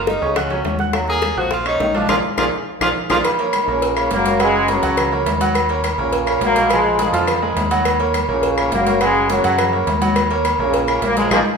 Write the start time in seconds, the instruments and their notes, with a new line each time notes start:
Already playing: fingered electric bass F#1, upright piano A#3 A#4 A#5
0.07 tenor saxophone D#4, high bongo, high conga, high timbale, low timbale
0.22 fingered electric bass C#2, trombone section C#3, upright piano C#4 C#5 C#6, high conga
0.36 tenor saxophone C#4, upright piano F#4 F#5 F#6, high bongo, high conga, low conga, high timbale, claves
0.50 trombone section F#3, upright piano C#4 C#5 C#6, high bongo, high conga, low conga, high timbale
0.64 fingered electric bass D#2, high bongo, low bongo, high conga, high timbale, low timbale
0.79 upright piano F#4 F#5 F#6, high bongo, high conga
0.93 trombone section F#3, high bongo, high conga, high timbale, claves
1.08 upright piano A#3 A#4 A#5, tenor saxophone G#4, high bongo, high conga
1.22 high bongo, high conga, high timbale, low timbale, claves
1.37 fingered electric bass A#1, trombone section F3, upright piano F#4 F#5 F#6, tenor saxophone F#4
1.51 tenor saxophone F4, high bongo, high conga, high timbale
1.66 upright piano C#4 C#5 C#6, tenor saxophone D#4, high bongo, high conga, high timbale, claves
1.79 fingered electric bass A#1, trombone section D#3, high bongo, low bongo, high conga, low timbale
1.94 upright piano F3 F4 F5, tenor saxophone D4, high bongo, high conga, high timbale
2.08 fingered electric bass A#1, trombone section F3 G#3 A#3, tenor saxophone F4, upright piano G#4 A#4 D5, low bongo, low conga, high timbale, claves
2.37 fingered electric bass A#1, trombone section F3 G#3 A#3, tenor saxophone F4, upright piano G#4 A#4 D5, low bongo, low conga, high timbale, claves
2.80 fingered electric bass A#1, trombone section F3 G#3 A#3, tenor saxophone F4, upright piano G#4 A#4 D5, low bongo, low conga, high timbale, claves
3.10 fingered electric bass A#1, trombone section F3 G#3 A#3, tenor saxophone F4, upright piano G#4 A#4 D5, low bongo, low conga, high timbale, claves
3.24 cowbell, high conga, low agogo, claves
3.39 upright piano A#3 A#4 C#5, high conga, low agogo
3.53 cowbell, high conga, low timbale, low agogo, claves
3.62 trombone section D#3
3.67 fingered electric bass A#1, trombone section A#2 C#3, upright piano A#3 A#4 C#5
3.82 cowbell, high conga, low agogo
3.97 upright piano A#3 A#4 C#5, high conga, low agogo, claves
4.11 fingered electric bass F#1, trombone section F#3 A#3, cowbell, high conga, low timbale
4.25 upright piano A#3 A#4 C#5, cowbell, high conga, low agogo
4.40 trombone section C#3 G#3, upright piano F#3 F#4 F#5, cowbell, high conga, low agogo, claves
4.54 high conga
4.68 trombone section C#3 F#3, upright piano A#3 A#4 C#5, cowbell, high conga, low timbale, low agogo
4.83 fingered electric bass C#2, upright piano F#3 F#4 F#5, cowbell
4.97 cowbell, high conga, low conga, low agogo, claves
5.12 upright piano A#3 A#4 C#5, high conga
5.26 fingered electric bass D#2, cowbell, high conga, low timbale, low agogo
5.41 upright piano F#3 F#4 F#5, cowbell, high conga, low agogo
5.55 cowbell, high conga, low agogo, claves
5.69 upright piano A#3 A#4 C#5, high conga, low agogo
5.84 cowbell, high conga, low timbale, low agogo, claves
5.98 fingered electric bass A#1, trombone section A#2 C#3, upright piano A#3 A#4 C#5
6.12 cowbell, high conga, low agogo
6.27 upright piano A#3 A#4 C#5, high conga, low agogo, claves
6.41 fingered electric bass A#1, trombone section F#3 A#3, cowbell, high conga, low timbale
6.55 upright piano G#3 G#4 A#4, cowbell, high conga, low agogo
6.70 upright piano F3 F4 F5, trombone section F3 G#3, cowbell, high conga, low agogo, claves
6.85 high conga
6.99 trombone section D3 F3, upright piano G#3 G#4 A#4, cowbell, high conga, low timbale, low agogo
7.12 fingered electric bass F2, upright piano F3 F4 F5, cowbell
7.27 cowbell, high conga, low conga, low agogo, claves
7.42 upright piano G#3 G#4 A#4, high conga
7.56 fingered electric bass D#2, cowbell, high conga, low timbale, low agogo
7.71 upright piano F#3 F#4 F#5, cowbell, high conga, low agogo
7.85 cowbell, high conga, low agogo, claves
8.00 upright piano A#3 A#4 C#5, high conga, low agogo
8.14 cowbell, high conga, low timbale, low agogo, claves
8.28 fingered electric bass A#1, trombone section A#2 C#3, upright piano A#3 A#4 C#5
8.43 cowbell, high conga, low agogo
8.58 upright piano A#3 A#4 C#5, high conga, low agogo, claves
8.72 fingered electric bass F#1, trombone section F#3 A#3, cowbell, high conga, low timbale
8.86 upright piano A#3 A#4 C#5, cowbell, high conga, low agogo
9.01 trombone section C#3 G#3, upright piano F#3 F#4 F#5, cowbell, high conga, low agogo, claves
9.15 high conga
9.30 trombone section C#3 F#3, upright piano A#3 A#4 C#5, cowbell, high conga, low timbale, low agogo
9.44 fingered electric bass F#2, upright piano F#3 F#4 F#5, cowbell
9.58 cowbell, high conga, low conga, low agogo, claves
9.73 upright piano A#3 A#4 C#5, high conga
9.87 fingered electric bass D#2, cowbell, high conga, low timbale, low agogo
10.01 upright piano F#3 F#4 F#5, cowbell, high conga, low agogo
10.16 cowbell, high conga, low agogo, claves
10.30 upright piano A#3 A#4 C#5, high conga, low agogo
10.45 cowbell, high conga, low timbale, low agogo, claves
10.59 fingered electric bass A#1, trombone section A#2 C#3, upright piano A#3 A#4 C#5
10.73 cowbell, high conga, low agogo
10.88 upright piano A#3 A#4 C#5, high conga, low agogo, claves
11.02 fingered electric bass A#1, trombone section F#3 A#3, cowbell, high conga, low timbale
11.16 trombone section F3 G#3, upright piano G#3 G#4 A#4, cowbell, high conga, low agogo
11.31 fingered electric bass A#1, trombone section F3 G#3 A#3, upright piano F4 G#4 A#4, cowbell, high conga, high timbale, claves